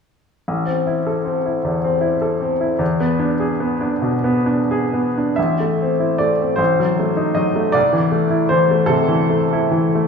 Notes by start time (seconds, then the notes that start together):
0.48 A1
0.66 C4
0.87 E4
1.07 A4
1.25 C4
1.46 E4
1.64 E2
1.84 C4
2.01 E4
2.22 A4
2.40 C4
2.61 E4
2.79 E2
3.00 B3
3.19 D4
3.40 G#4
3.60 B3
3.81 D4
4.02 B2
4.24 B3
4.46 D4
4.71 G#4
4.94 B3
5.17 D4
5.36 A1 E5
5.60 A3
5.82 C4
6.00 E4
6.18 A3 D5
6.42 C4
6.56 A1 C5
6.80 F#3
6.99 A3
7.17 D#4
7.35 F#3 D#5
7.56 A3
7.72 C2 D5
7.93 E3
8.12 A3
8.30 E4
8.49 E3 C5
8.71 A3
8.86 C3 A4
9.08 E3
9.30 A3
9.53 E4
9.71 E3
9.95 A3